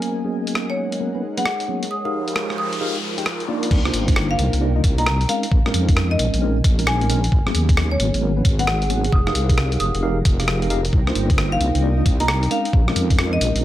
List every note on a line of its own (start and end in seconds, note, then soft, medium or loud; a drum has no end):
0.00 0.21 F#3 medium
0.00 0.21 A#3 medium
0.00 0.21 B3 medium
0.00 0.21 C#4 medium
0.00 0.21 A#4 loud
0.00 0.84 A#4 medium
0.00 1.87 D#5 medium
0.00 0.16 G#5 medium
0.00 0.68 G#5 medium
0.00 closed hi-hat medium
0.10 1.89 G#3 medium
0.10 3.67 D#4 medium
0.10 2.64 G#4 medium
0.10 1.89 A#4 medium
0.10 1.89 F#5 medium
0.25 0.99 F#3 medium
0.25 0.99 A#3 medium
0.25 0.99 B3 medium
0.25 0.99 C#4 medium
0.25 0.99 G#4 medium
0.47 1.91 C#5 medium
0.47 closed hi-hat medium
0.55 cross-stick loud
0.70 0.84 C#5 medium
0.92 closed hi-hat medium
1.00 1.10 F#3 medium
1.00 1.11 A#3 medium
1.00 1.10 B3 medium
1.00 1.10 C#4 medium
1.00 1.11 A#4 medium
1.15 1.21 F#3 medium
1.15 1.21 A#3 medium
1.15 1.21 B3 medium
1.15 1.21 C#4 medium
1.15 1.21 B4 medium
1.37 1.43 F#3 loud
1.37 1.43 A#3 medium
1.37 1.43 B3 medium
1.37 1.43 C#4 medium
1.37 1.43 B4 loud
1.37 1.51 F#5 medium
1.37 closed hi-hat medium
1.46 cross-stick loud
1.60 closed hi-hat medium
1.68 1.83 F#3 medium
1.68 1.83 A#3 medium
1.68 1.83 B3 medium
1.68 1.83 C#4 medium
1.68 1.83 G#4 medium
1.83 closed hi-hat medium
1.90 3.69 F3 medium
1.90 3.69 G#3 medium
1.90 4.35 F4 medium
1.90 3.69 A#4 medium
1.90 3.69 C5 medium
1.90 3.69 G5 medium
1.90 2.00 D#6 medium
1.90 noise sweep medium
2.05 2.79 D#4 medium
2.05 2.79 G4 medium
2.05 2.79 G#4 medium
2.05 2.79 A#4 medium
2.05 8.06 A#4 medium
2.05 2.79 F5 loud
2.05 2.10 D#6 medium
2.28 closed hi-hat medium
2.34 8.05 D#4 medium
2.34 cross-stick loud
2.50 cross-stick medium
2.55 5.29 G5 medium
2.55 2.95 D#6 medium
2.73 closed hi-hat medium
2.81 2.96 D#4 loud
2.81 2.96 G4 medium
2.81 2.96 G#4 medium
2.81 2.96 A#4 medium
2.81 2.96 F5 loud
2.95 closed hi-hat soft
3.18 3.24 D#4 medium
3.18 3.24 G4 medium
3.18 3.24 G#4 medium
3.18 3.24 A#4 medium
3.18 3.24 G5 loud
3.18 closed hi-hat medium
3.26 cross-stick loud
3.40 closed hi-hat medium
3.49 3.82 A#3 loud
3.49 3.82 D4 medium
3.49 3.82 D#4 medium
3.49 3.82 F4 medium
3.49 3.82 D5 loud
3.63 closed hi-hat medium
3.71 3.90 C2 loud
3.71 kick loud
3.71 crash loud
3.85 4.59 A#3 medium
3.85 4.59 D4 medium
3.85 4.59 D#4 medium
3.85 4.59 F4 medium
3.85 4.59 C5 medium
3.85 cross-stick medium
3.94 4.36 G1 medium
3.94 closed hi-hat loud
4.08 kick loud
4.08 closed hi-hat medium
4.16 cross-stick loud
4.31 4.44 F5 medium
4.39 4.50 C2 loud
4.39 closed hi-hat loud
4.53 4.81 C2 medium
4.53 closed hi-hat medium
4.61 4.71 A#3 medium
4.61 4.71 D4 medium
4.61 4.71 D#4 medium
4.61 4.71 F4 medium
4.61 4.71 D5 medium
4.76 4.81 A#3 medium
4.76 4.81 D4 medium
4.76 4.81 D#4 medium
4.76 4.81 F4 medium
4.76 4.81 D#5 medium
4.84 5.26 C2 medium
4.84 kick loud
4.84 closed hi-hat loud
4.98 5.04 A#3 loud
4.98 5.04 D4 medium
4.98 5.04 D#4 medium
4.98 5.04 F4 medium
4.98 5.04 D#5 loud
4.98 5.12 A#5 medium
4.98 closed hi-hat medium
5.06 cross-stick loud
5.21 closed hi-hat medium
5.29 5.44 G#3 medium
5.29 5.44 C4 medium
5.29 5.44 C#4 medium
5.29 5.44 D#4 medium
5.29 5.44 A#4 medium
5.29 5.47 F5 medium
5.29 closed hi-hat loud
5.43 closed hi-hat medium
5.52 5.70 A#1 loud
5.52 kick loud
5.58 8.05 G#5 medium
5.66 6.40 G#3 loud
5.66 6.40 C4 medium
5.66 6.40 C#4 medium
5.66 6.40 D#4 medium
5.66 6.40 A#4 loud
5.66 cross-stick medium
5.74 6.16 F2 medium
5.74 closed hi-hat loud
5.89 kick loud
5.89 closed hi-hat medium
5.97 cross-stick loud
6.11 6.16 D#5 medium
6.19 6.31 A#1 loud
6.19 6.28 D#5 medium
6.19 closed hi-hat loud
6.34 6.62 A#1 loud
6.34 closed hi-hat medium
6.42 6.57 G#3 loud
6.42 6.57 C4 medium
6.42 6.57 C#4 medium
6.42 6.57 D#4 medium
6.42 6.57 A#4 loud
6.64 7.29 A#1 medium
6.64 kick loud
6.64 closed hi-hat loud
6.79 6.98 G#3 medium
6.79 6.98 C4 medium
6.79 6.98 C#4 medium
6.79 6.98 D#4 medium
6.79 6.98 A#4 medium
6.79 closed hi-hat medium
6.87 7.38 G#5 loud
6.87 cross-stick loud
7.01 7.07 G#3 medium
7.01 7.08 C4 medium
7.01 7.07 C#4 medium
7.01 7.07 D#4 medium
7.01 7.07 A#4 medium
7.01 closed hi-hat soft
7.09 7.19 G#3 loud
7.09 7.19 C4 medium
7.09 7.20 C#4 medium
7.09 7.19 D#4 medium
7.09 7.19 A#4 loud
7.09 closed hi-hat loud
7.24 closed hi-hat medium
7.32 7.51 G#1 loud
7.32 9.86 G#4 medium
7.32 kick loud
7.46 8.20 F#3 medium
7.46 8.20 A#3 medium
7.46 8.20 B3 medium
7.46 8.20 C#4 medium
7.46 8.20 G#4 loud
7.46 cross-stick medium
7.55 7.97 D#2 medium
7.55 closed hi-hat loud
7.65 9.12 C#5 medium
7.69 kick loud
7.69 closed hi-hat medium
7.77 9.12 F#5 medium
7.77 cross-stick loud
7.91 8.05 C#5 medium
8.00 8.11 G#1 loud
8.00 closed hi-hat loud
8.14 8.42 G#1 medium
8.14 closed hi-hat medium
8.22 8.32 F#3 medium
8.22 8.32 A#3 medium
8.22 8.32 B3 medium
8.22 8.32 C#4 medium
8.22 8.32 A#4 medium
8.37 8.42 F#3 medium
8.37 8.42 A#3 medium
8.37 8.42 B3 medium
8.37 8.42 C#4 medium
8.37 8.42 B4 medium
8.45 9.10 G#1 medium
8.45 kick loud
8.45 closed hi-hat loud
8.59 8.65 F#3 loud
8.59 8.65 A#3 medium
8.59 8.65 B3 medium
8.59 8.65 C#4 medium
8.59 8.65 B4 loud
8.59 8.73 F#5 medium
8.59 closed hi-hat medium
8.67 cross-stick loud
8.82 closed hi-hat medium
8.90 9.05 F#3 medium
8.90 9.05 A#3 medium
8.90 9.05 B3 medium
8.90 9.05 C#4 medium
8.90 9.05 G#4 medium
8.90 closed hi-hat loud
9.04 closed hi-hat medium
9.12 9.31 F1 loud
9.12 13.64 A#4 medium
9.12 9.22 D#6 medium
9.12 kick loud
9.27 10.01 D#4 loud
9.27 10.01 G4 medium
9.27 10.01 G#4 medium
9.27 10.01 A#4 medium
9.27 10.01 F5 loud
9.27 9.32 D#6 medium
9.27 cross-stick medium
9.35 9.77 C2 medium
9.35 closed hi-hat loud
9.49 13.64 D#4 medium
9.49 kick loud
9.49 closed hi-hat medium
9.58 cross-stick loud
9.72 closed hi-hat medium
9.80 9.91 F1 loud
9.80 10.17 D#6 loud
9.80 closed hi-hat loud
9.95 10.22 F1 medium
9.95 12.51 G5 medium
9.95 closed hi-hat medium
10.03 10.18 D#4 loud
10.03 10.18 G4 medium
10.03 10.18 G#4 medium
10.03 10.18 A#4 medium
10.03 10.18 F5 loud
10.25 10.90 F1 medium
10.25 kick loud
10.25 closed hi-hat loud
10.40 10.59 D#4 medium
10.40 10.59 G4 medium
10.40 10.59 G#4 medium
10.40 10.59 A#4 medium
10.40 10.59 F5 medium
10.40 cross-stick soft
10.40 closed hi-hat medium
10.48 cross-stick loud
10.62 10.68 D#4 medium
10.62 10.68 G4 medium
10.62 10.68 G#4 medium
10.62 10.68 A#4 medium
10.62 10.68 F5 medium
10.62 closed hi-hat medium
10.70 10.80 D#4 loud
10.70 10.80 G4 medium
10.70 10.80 G#4 medium
10.70 10.80 A#4 medium
10.70 10.80 F5 loud
10.70 closed hi-hat loud
10.85 closed hi-hat medium
10.93 11.12 C2 loud
10.93 kick loud
11.07 11.81 A#3 medium
11.07 11.81 D4 medium
11.07 11.81 D#4 medium
11.07 11.81 F4 medium
11.07 11.81 C5 medium
11.07 cross-stick medium
11.15 11.58 G1 medium
11.15 closed hi-hat loud
11.30 kick loud
11.30 closed hi-hat medium
11.38 cross-stick loud
11.52 11.66 F5 medium
11.60 11.72 C2 loud
11.60 closed hi-hat loud
11.75 12.03 C2 loud
11.75 closed hi-hat medium
11.83 11.93 A#3 medium
11.83 11.93 D4 medium
11.83 11.93 D#4 medium
11.83 11.93 F4 medium
11.83 11.93 D5 medium
11.98 12.03 A#3 medium
11.98 12.03 D4 medium
11.98 12.03 D#4 medium
11.98 12.03 F4 medium
11.98 12.03 D#5 medium
12.06 12.48 C2 medium
12.06 kick loud
12.06 closed hi-hat loud
12.20 12.26 A#3 loud
12.20 12.26 D4 medium
12.20 12.26 D#4 medium
12.20 12.26 F4 medium
12.20 12.26 D#5 loud
12.20 12.34 A#5 medium
12.20 closed hi-hat medium
12.28 cross-stick loud
12.43 closed hi-hat medium
12.51 12.66 G#3 medium
12.51 12.66 C4 medium
12.51 12.66 C#4 medium
12.51 12.66 D#4 medium
12.51 12.66 A#4 loud
12.51 12.69 F5 medium
12.51 closed hi-hat loud
12.65 closed hi-hat medium
12.73 12.92 A#1 medium
12.73 kick loud
12.88 13.62 G#3 loud
12.88 13.62 C4 medium
12.88 13.62 C#4 medium
12.88 13.62 D#4 medium
12.88 13.62 A#4 loud
12.88 cross-stick medium
12.96 13.38 F2 medium
12.96 closed hi-hat loud
13.10 kick loud
13.10 closed hi-hat medium
13.19 cross-stick loud
13.32 13.38 D#5 medium
13.32 13.64 G#5 medium
13.41 13.52 A#1 loud
13.41 13.50 D#5 medium
13.41 closed hi-hat loud
13.55 13.64 A#1 loud
13.55 closed hi-hat medium